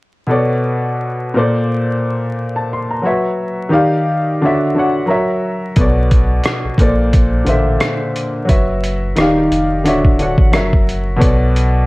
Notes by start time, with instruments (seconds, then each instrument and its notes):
0.27 upright piano B2 B3 A4 C#5
0.31 upright piano D5
1.34 upright piano A#2 A#3 A4 C5
1.38 upright piano D5
2.56 upright piano A5
2.73 upright piano C6
2.91 upright piano A#5
3.02 upright piano F#3 F#4 B4 C#5
3.06 upright piano E5
3.69 upright piano D#3 D#4 G4 D5
3.73 upright piano F5
4.41 upright piano D3 D4 F#4 C#5
4.46 upright piano E5
4.75 upright piano D3 D4 F#4 C#5
4.79 upright piano F#5
5.06 upright piano F#3 F#4 A#4 C#5 A#5
5.10 upright piano E5
5.76 sub bass B1, upright piano B2 B3 A4 C#5, kick, closed hi-hat
5.80 upright piano D5
6.11 kick, closed hi-hat
6.44 cross-stick, closed hi-hat
6.64 sub bass A#1
6.78 sub bass A#1, upright piano A#2 A#3 A4 C5, kick, closed hi-hat
6.83 upright piano D5
7.13 kick, closed hi-hat
7.45 sub bass A1, upright piano D3 A#3 A4 C5, closed hi-hat
7.49 upright piano E5
7.80 cross-stick, closed hi-hat
8.16 closed hi-hat
8.45 upright piano F#3 F#4 B4 C#5, closed hi-hat
8.49 sub bass F#1, upright piano E5, kick
8.84 closed hi-hat
9.16 sub bass D#1, upright piano D#3 D#4 G4 D5, cross-stick, closed hi-hat
9.20 upright piano F5
9.51 sub bass F1, closed hi-hat
9.84 sub bass D1, upright piano D3 D4 F#4 C#5 E5, closed hi-hat
10.05 kick
10.18 upright piano D3 D4 F#4 C#5, closed hi-hat
10.22 upright piano F#5
10.38 sub bass A1, kick
10.52 sub bass F#1, upright piano F#3 F#4 A#4 C#5 E5, cross-stick, closed hi-hat
10.73 kick
10.89 closed hi-hat
11.16 upright piano B2 B3 A4 C#5
11.21 sub bass B1, upright piano D5, kick, closed hi-hat
11.56 closed hi-hat